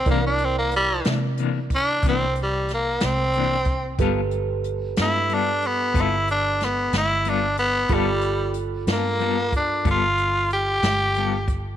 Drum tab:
HH |xxxxxxxxxxxx|xxxxxxxxxxxx|xxxxxxxxxxxx|
SD |---o----oo--|---o----oo--|---o-----o--|
BD |o----oo----o|o-----o-----|o----oo----o|